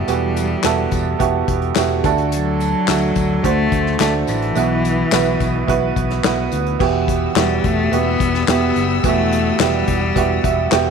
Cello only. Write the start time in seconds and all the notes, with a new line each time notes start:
Already playing: G3
2.33 F#3
3.44 A3
3.99 A3
4.28 E3
7.38 G3
7.65 A3
7.93 B3
8.50 B3
9.05 A3
9.61 G3